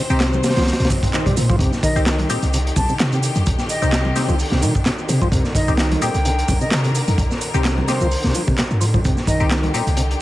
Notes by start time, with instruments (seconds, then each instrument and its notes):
Already playing: string section D#3 C4 C5
0.10 808-style bass C2, tonewheel organ C3, synth stab C4 D#4 G4, shaker
0.20 snare, clap, closed hi-hat, shaker
0.33 high conga, shaker
0.44 flute C5, snare, closed hi-hat, open hi-hat, shaker
0.50 snare, closed hi-hat
0.56 808-style bass C2, tonewheel organ F3, snare, closed hi-hat, low conga, shaker
0.62 snare, closed hi-hat
0.67 snare, closed hi-hat, swell, shaker
0.73 snare, closed hi-hat
0.79 808-style bass C2, tonewheel organ C3, closed hi-hat, shaker
0.85 snare, closed hi-hat
0.90 tonewheel organ C3, kick, closed hi-hat, open hi-hat, high conga, shaker
1.03 kick, closed hi-hat, shaker
1.13 tonewheel organ D#3, snare, clap, shaker
1.26 808-style bass A#2, tonewheel organ G3, kick, closed hi-hat, shaker
1.36 tonewheel organ A#2, 808-style bass A#2, closed hi-hat, open hi-hat, shaker
1.49 808-style bass G2, tonewheel organ F3, kick, high conga, shaker
1.59 808-style bass C2, tonewheel organ C3, string section D3 G4, kick, closed hi-hat, shaker
1.73 snare, shaker
1.83 tonewheel organ D#3, flute D#5, kick, closed hi-hat, open hi-hat, shaker
1.96 808-style bass C2, synth stab C4 D#4 G4, shaker
2.06 tonewheel organ D#3, snare, clap, closed hi-hat, shaker
2.19 closed hi-hat, high conga
2.30 tonewheel organ A#2, synth stab C4 D#4 G4, closed hi-hat, open hi-hat, shaker
2.43 808-style bass C2, closed hi-hat, low conga, shaker
2.53 tonewheel organ C3, closed hi-hat, shaker
2.67 closed hi-hat
2.76 808-style bass C2, tonewheel organ C3, flute A5, kick, closed hi-hat, open hi-hat, high conga, shaker
2.89 tonewheel organ C3, 808-style bass C3, shaker
2.99 808-style bass C3, snare, clap, closed hi-hat, shaker
3.12 tonewheel organ C3, closed hi-hat, shaker
3.23 closed hi-hat, open hi-hat, shaker
3.35 808-style bass F2, closed hi-hat, high conga, shaker
3.46 808-style bass C2, kick, closed hi-hat, shaker
3.58 snare, shaker
3.69 flute D#5, closed hi-hat, open hi-hat, shaker
3.82 808-style bass C2, tonewheel organ C3, synth stab C4 D#4 G4, shaker
3.93 snare, clap, closed hi-hat, shaker
4.05 high conga
4.16 synth stab C4 D#4 G4, snare, closed hi-hat, open hi-hat, shaker
4.28 808-style bass C2, tonewheel organ F3, low conga, shaker
4.39 open hi-hat, shaker
4.51 808-style bass C2, tonewheel organ C3, snare
4.62 808-style bass C3, tonewheel organ D#3, closed hi-hat, open hi-hat, high conga, shaker
4.75 kick, shaker
4.86 tonewheel organ C3, snare, clap, closed hi-hat, shaker
4.98 shaker
5.08 808-style bass C3, tonewheel organ C3, closed hi-hat, open hi-hat, shaker
5.22 tonewheel organ F3, kick, high conga, shaker
5.32 808-style bass C2, tonewheel organ C3, string section A#4, kick, closed hi-hat, shaker
5.44 snare, shaker
5.55 tonewheel organ D#3, flute D#5, kick, closed hi-hat, open hi-hat, shaker
5.68 808-style bass C2, synth stab C4 D#4 G4, shaker
5.78 tonewheel organ D#3, snare, clap, closed hi-hat, shaker
5.91 closed hi-hat, high conga
6.02 tonewheel organ A#2, synth stab C4 D#4 G4, flute G5, closed hi-hat, open hi-hat, shaker
6.14 808-style bass C2, closed hi-hat, low conga, shaker
6.25 tonewheel organ C3, closed hi-hat, shaker
6.39 closed hi-hat
6.48 808-style bass C2, tonewheel organ C3, kick, closed hi-hat, open hi-hat, high conga, shaker
6.61 tonewheel organ C3, 808-style bass C3, flute D#5, shaker
6.71 808-style bass C3, snare, clap, closed hi-hat, shaker
6.84 tonewheel organ C3, closed hi-hat, shaker
6.95 closed hi-hat, open hi-hat, shaker
7.08 808-style bass F2, closed hi-hat, high conga, shaker
7.18 808-style bass C2, kick, closed hi-hat, shaker
7.31 snare, shaker
7.41 closed hi-hat, open hi-hat, shaker
7.54 808-style bass C2, tonewheel organ C3, synth stab C4 D#4 G4, shaker
7.65 snare, clap, closed hi-hat, shaker
7.78 high conga
7.88 synth stab C4 D#4 G4, flute C5, snare, closed hi-hat, open hi-hat, shaker
8.01 808-style bass C2, tonewheel organ F3, low conga, shaker
8.11 open hi-hat, shaker
8.24 808-style bass C2, tonewheel organ C3, snare
8.35 tonewheel organ F3, closed hi-hat, open hi-hat, high conga, shaker
8.47 tonewheel organ C3, kick, shaker
8.58 tonewheel organ C3, snare, clap, closed hi-hat, shaker
8.71 808-style bass G2, shaker
8.81 808-style bass A2, tonewheel organ F3, closed hi-hat, open hi-hat, shaker
8.94 tonewheel organ F3, kick, high conga, shaker
9.04 808-style bass C2, tonewheel organ C3, string section G4, kick, closed hi-hat, shaker
9.17 snare, shaker
9.27 tonewheel organ D#3, flute D#5, kick, closed hi-hat, open hi-hat, shaker
9.40 808-style bass C2, synth stab C4 D#4 G4, shaker
9.51 tonewheel organ D#3, snare, clap, closed hi-hat, shaker
9.63 closed hi-hat, high conga
9.74 tonewheel organ A#2, synth stab C4 D#4 G4, closed hi-hat, open hi-hat, shaker
9.87 808-style bass C2, closed hi-hat, low conga, shaker
9.97 tonewheel organ C3, closed hi-hat, shaker
10.11 closed hi-hat